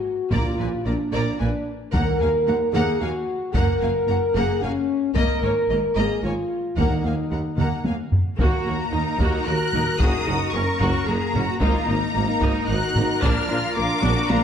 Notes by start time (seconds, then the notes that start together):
Already playing: F#4
0.31 A#1 A#2 A#3 F4 D5 A#5, taiko
0.59 A#1 A#2 A#3 B4 G#5
0.85 A#1 A#2 A#3 D4 D5 A#5
1.13 A#1 A#2 A#3 D5 A#5
1.39 A#1 A#2 A#3 D4 B4 G#5
1.92 D#2 D#3 A#3 A#4 F#5 A#5, taiko
2.20 D#2 A#3 F5 G#5
2.47 D#2 A#3 F#5 A#5
2.73 D#2 A#3 G#4 F#5 A#5
2.99 D#2 A#3 F#4 F5 G#5
3.54 F#1 F#2 A#3 A#4 F#5 A#5, taiko
3.81 F#1 F#2 A#3 F5 G#5
4.08 F#1 F#2 A#3 F#5 A#5
4.34 F#1 F#2 A#3 G#4 F#5 A#5
4.61 F#1 F#2 A#3 C#4 F5 G#5
5.14 G#1 G#2 A#3 A#4 D#5 A#5, taiko
5.42 G#1 G#2 A#3 C#5 G#5
5.69 G#1 G#2 A#3 D#5 A#5
5.96 G#1 G#2 A#3 G#4 D#5 A#5
6.23 G#1 G#2 A#3 F4 C#5 G#5
6.76 D#2 D#3 A#3 D#4 F#5 A#5, taiko
7.04 D#2 A#3 F5 G#5
7.31 D#2 A#3 F#5 A#5
7.58 D#2 A#3 F#5 A#5, taiko mid
7.85 D#2 A#3 F5 G#5, taiko high
8.12 taiko low
8.39 D#2 A#3 F#4 A#4 A#5, taiko
8.66 D#2 A#3 F#4
8.92 D#2 A#3 D#4
9.20 D#2 A#3 F#4, taiko
9.46 D#2 A#3 F#4 A#4 F#6
9.73 D#2 A#3 D#4, taiko low-mid
9.99 F#1 A#3 D#4 F#4 G#4 D#6, taiko
10.27 F#1 A#3 F#4
10.53 F#1 A#3 C#4 A#4 C#6
10.80 F#1 A#3 F#4, taiko
11.07 F#1 A#3 F#4 G#4 A#5
11.34 F#1 A#3 C#4 F#4, taiko low-mid
11.61 G#1 A#3 D#4 F4 A#4 A#5, taiko
11.87 G#1 A#3 D#4
12.14 G#1 A#3
12.41 G#1 A#3 D#4, taiko
12.68 G#1 A#3 D#4 F#4 F#6
12.95 G#1 A#3, taiko low-mid
13.22 A#1 A#3 D4 F4 F6, taiko
13.49 A#1 A#3 D4 F4
13.76 A#1 A#3 D4 F4 D6
14.03 A#1 A#3 D4 F#4, taiko high
14.30 A#1 A#3 D4 F4 A#5, taiko high